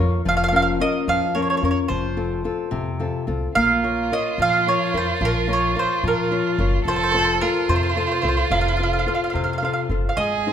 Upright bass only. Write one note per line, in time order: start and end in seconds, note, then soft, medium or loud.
0.00 0.16 F2 medium
0.26 0.79 F1 medium
1.08 1.43 F2 medium
1.63 1.80 F2 medium
1.90 2.44 F1 medium
2.72 3.09 F2 medium
3.28 3.46 C2 medium
3.56 4.10 A#1 medium
4.38 4.74 A#2 medium
4.94 5.12 F2 medium
5.21 5.74 A#1 medium
6.03 6.39 A#2 medium
6.58 6.76 F#1 medium
6.85 7.39 F1 medium
7.69 8.04 F2 medium
8.23 8.41 C2 medium
8.50 9.05 F1 medium
9.34 9.71 F2 medium
9.89 10.08 F#1 medium
10.17 10.53 G#1 medium